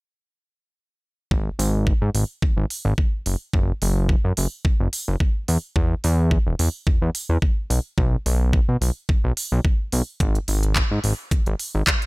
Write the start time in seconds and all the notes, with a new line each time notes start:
1.31 G#1, kick
1.59 G#1, open hi-hat
1.87 kick
2.02 G#2
2.15 G#1, open hi-hat
2.42 G#1, kick
2.57 G#1
2.70 open hi-hat
2.85 G#1
2.98 kick
3.26 F#1, open hi-hat
3.53 F#1, kick
3.82 F#1, open hi-hat
4.09 kick
4.25 F#2
4.37 F#1, open hi-hat
4.65 kick
4.80 F#1
4.93 open hi-hat
5.08 F#1
5.20 kick
5.48 E2, open hi-hat
5.76 E2, kick
6.04 E2, open hi-hat
6.31 kick
6.47 E1
6.59 E2, open hi-hat
6.87 E2, kick
7.02 E2
7.15 open hi-hat
7.29 E2
7.42 kick
7.70 B1, open hi-hat
7.98 B1, kick
8.26 B1, open hi-hat
8.53 kick
8.69 B2
8.81 B1, open hi-hat
9.09 kick
9.24 B1
9.37 open hi-hat
9.52 B1
9.65 kick
9.92 B1, open hi-hat
10.20 G#1, kick, closed hi-hat
10.35 closed hi-hat
10.48 G#1, open hi-hat
10.63 closed hi-hat
10.76 kick, clap, closed hi-hat
10.91 G#2
11.04 G#1, open hi-hat
11.31 G#1, kick, closed hi-hat
11.46 G#1, closed hi-hat
11.59 open hi-hat
11.75 G#1
11.87 kick, clap, closed hi-hat
12.02 closed hi-hat